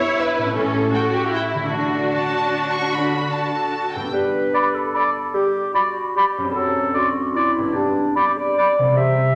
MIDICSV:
0, 0, Header, 1, 10, 480
1, 0, Start_track
1, 0, Key_signature, 2, "major"
1, 0, Tempo, 373599
1, 709, Time_signature, 3, 2, 24, 8
1, 1191, Tempo, 397351
1, 2631, Tempo, 402414
1, 5033, Key_signature, 1, "major"
1, 11257, End_track
2, 0, Start_track
2, 0, Title_t, "Flute section"
2, 0, Program_c, 0, 73
2, 5519, Note_on_c, 0, 83, 40
2, 5608, Note_off_c, 0, 83, 0
2, 5987, Note_on_c, 0, 83, 40
2, 6075, Note_off_c, 0, 83, 0
2, 6952, Note_on_c, 0, 83, 39
2, 7043, Note_off_c, 0, 83, 0
2, 7457, Note_on_c, 0, 83, 35
2, 7542, Note_off_c, 0, 83, 0
2, 8384, Note_on_c, 0, 84, 41
2, 8474, Note_off_c, 0, 84, 0
2, 8869, Note_on_c, 0, 84, 41
2, 8956, Note_off_c, 0, 84, 0
2, 9827, Note_on_c, 0, 83, 44
2, 9919, Note_off_c, 0, 83, 0
2, 10333, Note_on_c, 0, 83, 42
2, 10417, Note_off_c, 0, 83, 0
2, 11257, End_track
3, 0, Start_track
3, 0, Title_t, "Violin section"
3, 0, Program_c, 1, 48
3, 238, Note_on_c, 1, 76, 41
3, 341, Note_off_c, 1, 76, 0
3, 1213, Note_on_c, 1, 79, 33
3, 1310, Note_off_c, 1, 79, 0
3, 1693, Note_on_c, 1, 79, 33
3, 1790, Note_off_c, 1, 79, 0
3, 2637, Note_on_c, 1, 81, 38
3, 3317, Note_off_c, 1, 81, 0
3, 3355, Note_on_c, 1, 85, 41
3, 3582, Note_on_c, 1, 83, 34
3, 3586, Note_off_c, 1, 85, 0
3, 4055, Note_on_c, 1, 81, 33
3, 4060, Note_off_c, 1, 83, 0
3, 4791, Note_on_c, 1, 79, 33
3, 4797, Note_off_c, 1, 81, 0
3, 5028, Note_off_c, 1, 79, 0
3, 11257, End_track
4, 0, Start_track
4, 0, Title_t, "Oboe"
4, 0, Program_c, 2, 68
4, 5517, Note_on_c, 2, 74, 38
4, 5696, Note_off_c, 2, 74, 0
4, 6016, Note_on_c, 2, 74, 38
4, 6185, Note_off_c, 2, 74, 0
4, 6957, Note_on_c, 2, 74, 38
4, 7137, Note_off_c, 2, 74, 0
4, 7461, Note_on_c, 2, 74, 35
4, 7629, Note_off_c, 2, 74, 0
4, 8382, Note_on_c, 2, 74, 40
4, 8562, Note_off_c, 2, 74, 0
4, 8886, Note_on_c, 2, 74, 38
4, 9056, Note_off_c, 2, 74, 0
4, 9838, Note_on_c, 2, 74, 40
4, 10019, Note_off_c, 2, 74, 0
4, 10338, Note_on_c, 2, 74, 41
4, 10505, Note_off_c, 2, 74, 0
4, 11257, End_track
5, 0, Start_track
5, 0, Title_t, "Violin section"
5, 0, Program_c, 3, 48
5, 0, Note_on_c, 3, 73, 70
5, 237, Note_off_c, 3, 73, 0
5, 239, Note_on_c, 3, 71, 66
5, 703, Note_on_c, 3, 69, 64
5, 710, Note_off_c, 3, 71, 0
5, 1419, Note_off_c, 3, 69, 0
5, 1437, Note_on_c, 3, 67, 55
5, 1679, Note_on_c, 3, 64, 47
5, 1680, Note_off_c, 3, 67, 0
5, 2150, Note_off_c, 3, 64, 0
5, 2161, Note_on_c, 3, 62, 49
5, 4567, Note_off_c, 3, 62, 0
5, 11257, End_track
6, 0, Start_track
6, 0, Title_t, "Clarinet"
6, 0, Program_c, 4, 71
6, 4320, Note_on_c, 4, 69, 46
6, 4988, Note_off_c, 4, 69, 0
6, 5038, Note_on_c, 4, 71, 67
6, 5765, Note_on_c, 4, 69, 58
6, 5783, Note_off_c, 4, 71, 0
6, 6481, Note_on_c, 4, 67, 60
6, 6499, Note_off_c, 4, 69, 0
6, 6947, Note_off_c, 4, 67, 0
6, 6954, Note_on_c, 4, 66, 56
6, 7443, Note_off_c, 4, 66, 0
6, 7450, Note_on_c, 4, 67, 58
6, 7910, Note_off_c, 4, 67, 0
6, 7916, Note_on_c, 4, 69, 58
6, 8380, Note_off_c, 4, 69, 0
6, 8399, Note_on_c, 4, 66, 54
6, 8879, Note_on_c, 4, 64, 58
6, 8897, Note_off_c, 4, 66, 0
6, 9347, Note_on_c, 4, 62, 60
6, 9365, Note_off_c, 4, 64, 0
6, 9830, Note_off_c, 4, 62, 0
6, 9838, Note_on_c, 4, 67, 57
6, 10098, Note_on_c, 4, 74, 64
6, 10116, Note_off_c, 4, 67, 0
6, 10798, Note_on_c, 4, 76, 73
6, 10816, Note_off_c, 4, 74, 0
6, 11257, Note_off_c, 4, 76, 0
6, 11257, End_track
7, 0, Start_track
7, 0, Title_t, "Viola section"
7, 0, Program_c, 5, 48
7, 0, Note_on_c, 5, 64, 55
7, 702, Note_on_c, 5, 61, 56
7, 704, Note_off_c, 5, 64, 0
7, 1178, Note_off_c, 5, 61, 0
7, 1189, Note_on_c, 5, 66, 51
7, 1669, Note_off_c, 5, 66, 0
7, 1678, Note_on_c, 5, 64, 40
7, 2141, Note_on_c, 5, 66, 43
7, 2149, Note_off_c, 5, 64, 0
7, 4748, Note_off_c, 5, 66, 0
7, 11257, End_track
8, 0, Start_track
8, 0, Title_t, "Harp"
8, 0, Program_c, 6, 46
8, 0, Note_on_c, 6, 43, 41
8, 0, Note_on_c, 6, 59, 38
8, 0, Note_on_c, 6, 64, 36
8, 0, Note_on_c, 6, 67, 34
8, 485, Note_on_c, 6, 45, 41
8, 543, Note_on_c, 6, 61, 32
8, 589, Note_off_c, 6, 64, 0
8, 604, Note_on_c, 6, 64, 35
8, 611, Note_off_c, 6, 43, 0
8, 642, Note_off_c, 6, 59, 0
8, 642, Note_off_c, 6, 67, 0
8, 657, Note_on_c, 6, 67, 32
8, 1930, Note_on_c, 6, 50, 29
8, 1980, Note_on_c, 6, 57, 25
8, 2037, Note_on_c, 6, 62, 25
8, 2063, Note_off_c, 6, 45, 0
8, 2089, Note_on_c, 6, 66, 26
8, 2090, Note_off_c, 6, 61, 0
8, 2119, Note_off_c, 6, 64, 0
8, 2144, Note_off_c, 6, 67, 0
8, 4816, Note_on_c, 6, 43, 34
8, 4873, Note_on_c, 6, 59, 32
8, 4905, Note_off_c, 6, 62, 0
8, 4919, Note_on_c, 6, 62, 31
8, 4943, Note_off_c, 6, 50, 0
8, 4968, Note_off_c, 6, 57, 0
8, 4976, Note_on_c, 6, 67, 29
8, 5021, Note_off_c, 6, 66, 0
8, 7706, Note_on_c, 6, 42, 36
8, 7754, Note_on_c, 6, 60, 34
8, 7795, Note_off_c, 6, 62, 0
8, 7809, Note_on_c, 6, 62, 29
8, 7829, Note_off_c, 6, 43, 0
8, 7858, Note_off_c, 6, 59, 0
8, 7865, Note_on_c, 6, 69, 32
8, 7909, Note_off_c, 6, 67, 0
8, 9148, Note_on_c, 6, 43, 39
8, 9198, Note_on_c, 6, 59, 31
8, 9237, Note_off_c, 6, 62, 0
8, 9251, Note_on_c, 6, 62, 32
8, 9266, Note_off_c, 6, 42, 0
8, 9290, Note_off_c, 6, 60, 0
8, 9310, Note_on_c, 6, 67, 31
8, 9345, Note_off_c, 6, 69, 0
8, 10578, Note_on_c, 6, 48, 40
8, 10632, Note_on_c, 6, 55, 32
8, 10685, Note_on_c, 6, 60, 34
8, 10711, Note_off_c, 6, 43, 0
8, 10727, Note_off_c, 6, 67, 0
8, 10737, Note_off_c, 6, 59, 0
8, 10741, Note_on_c, 6, 67, 33
8, 10763, Note_off_c, 6, 62, 0
8, 11257, Note_off_c, 6, 48, 0
8, 11257, Note_off_c, 6, 55, 0
8, 11257, Note_off_c, 6, 60, 0
8, 11257, Note_off_c, 6, 67, 0
8, 11257, End_track
9, 0, Start_track
9, 0, Title_t, "Bassoon"
9, 0, Program_c, 7, 70
9, 5034, Note_on_c, 7, 55, 45
9, 5432, Note_off_c, 7, 55, 0
9, 6474, Note_on_c, 7, 55, 50
9, 6866, Note_off_c, 7, 55, 0
9, 7923, Note_on_c, 7, 54, 52
9, 8311, Note_off_c, 7, 54, 0
9, 9351, Note_on_c, 7, 55, 52
9, 9748, Note_off_c, 7, 55, 0
9, 10798, Note_on_c, 7, 48, 51
9, 11188, Note_off_c, 7, 48, 0
9, 11257, End_track
10, 0, Start_track
10, 0, Title_t, "Cello section"
10, 0, Program_c, 8, 48
10, 716, Note_on_c, 8, 45, 51
10, 1110, Note_off_c, 8, 45, 0
10, 2154, Note_on_c, 8, 50, 39
10, 2550, Note_off_c, 8, 50, 0
10, 3595, Note_on_c, 8, 50, 35
10, 3983, Note_off_c, 8, 50, 0
10, 11257, End_track
0, 0, End_of_file